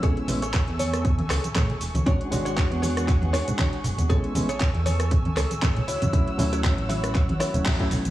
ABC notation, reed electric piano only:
X:1
M:4/4
L:1/16
Q:"Swing 16ths" 1/4=118
K:A
V:1 name="Reed electric piano"
[G,B,CE]2 [G,B,CE] z12 z | [G,CDF]2 [G,DFc]12- [G,DFc]2 | [G,B,CE]2 [G,B,CE] z12 z | [F,A,CE]2 [F,A,CE]8- [F,A,CE] [F,A,CE]2 [F,A,CE]3 |]